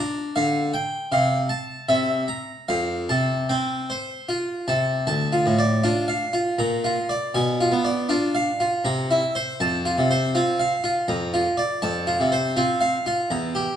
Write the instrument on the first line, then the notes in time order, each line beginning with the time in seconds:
harpsichord
0.00 D4 A#5
0.36 D3 F5
0.74 G5
1.12 C3 F5
1.49 A5
1.89 C3 E5
2.28 A#5
2.69 F2 F5
3.09 C3 A5
3.49 C4 G5
3.90 C5
4.29 F4
4.68 C3 A5
5.07 D2 A5
5.32 F4
5.46 A2
5.59 D5
5.84 D4 F4
6.08 F5
6.33 F4
6.59 A#2 A#5
6.84 F4
7.09 D5
7.34 B2 G#5
7.61 F4
7.72 B3
7.85 D5
8.09 D4 F4
8.35 F5
8.60 F4
8.85 C3 A#5
9.11 E4
9.35 C5
9.60 F2 A5
9.85 F4
9.98 C3
10.11 C5
10.35 C4 F4
10.60 F5
10.84 F4
11.08 F2 A#5
11.34 F4
11.57 D5
11.82 F2 A5
12.07 F4
12.20 C3
12.32 C5
12.57 C4 F4
12.81 F5
13.06 F4
13.31 E2 A#5
13.55 G4